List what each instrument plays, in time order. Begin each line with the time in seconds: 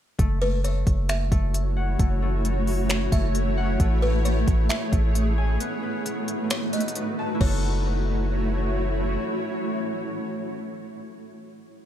0.18 808-style bass F#1, harp A3, ambient pad A3 E4 F#4 C#5, kick, closed hi-hat
0.42 harp A3, kalimba B4
0.64 harp A3, kalimba C#5, closed hi-hat
0.87 808-style bass F#1, kick, closed hi-hat
1.09 kalimba E5, finger snap, closed hi-hat
1.31 808-style bass F#1, harp A3, kick, closed hi-hat
1.54 closed hi-hat
1.77 harp F#5
1.99 808-style bass F#1, harp A3, kick, closed hi-hat
2.22 harp A3
2.44 harp A3, closed hi-hat
2.67 open hi-hat
2.89 kalimba C#5, finger snap, closed hi-hat
3.12 808-style bass F#1, harp A3, kalimba E5, kick, closed hi-hat
3.35 closed hi-hat
3.57 harp F#5
3.80 808-style bass A1, harp A3, ambient pad G#4, kick, closed hi-hat
4.02 harp A3, kalimba B4
4.25 harp A3, kalimba C#5, closed hi-hat
4.48 808-style bass A1, kick, closed hi-hat
4.69 kalimba E5, finger snap, closed hi-hat
4.93 808-style bass A1, harp A3, kick, closed hi-hat
5.15 closed hi-hat
5.38 harp G#5
5.60 ambient pad A3 D#4 F#4 B4, harp B3, closed hi-hat
5.83 harp B3
6.05 harp B3, closed hi-hat
6.28 closed hi-hat
6.50 kalimba C#5, finger snap, closed hi-hat
6.73 harp B3, kalimba D#5, closed hi-hat
6.80 closed hi-hat
6.88 closed hi-hat
6.95 closed hi-hat
7.19 harp A5
7.35 harp E4
7.41 808-style bass F#1, ambient pad A3 E4 F#4 C#5, harp F#4, kalimba C#5, kick, crash
7.47 harp A4